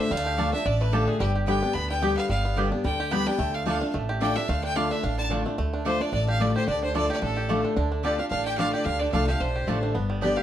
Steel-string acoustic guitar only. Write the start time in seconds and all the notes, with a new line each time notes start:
Already playing: D4 F4
0.11 D3
0.38 D3 A3 D4 F4
0.53 D4 F4
0.65 A2
0.92 D3 A3 D4 F4
1.20 G2
1.47 D3 G3 B3 G4
1.62 B3 G4
1.75 D3
2.02 D3 G3 B3 G4
2.30 G2
2.56 D3 G3 B3 G4
2.71 B3 G4
2.84 D3
3.11 D3 G3 B3 G4
3.26 B3 G4
3.39 D3
3.65 D3 A3 D4 F4
3.81 D4 F4
3.94 A2
4.20 D3 A3 D4 F4
4.36 D4 F4
4.49 D3
4.75 D3 A3 D4 F4
5.04 A2
5.29 D3 A3 D4 F4
5.45 D4 F4
5.59 D3
5.85 D3 A3 D4 F4
6.00 D4 F4
6.13 A2
6.40 D3 A3 D4 F4
6.68 D3
6.95 D3 A3 D4 F4
7.22 A2
7.49 D3 A3 D4 F4
7.77 D3
8.04 D3 A3 D4 F4
8.19 D4 F4
8.32 A2
8.58 D3 A3 D4 F4
8.85 D3
9.13 D3 A3 D4 F4
9.28 D4 F4
9.40 A2
9.67 D3 A3 D4 F4
9.95 G2
10.22 D3 G3 B3 G4
10.37 G4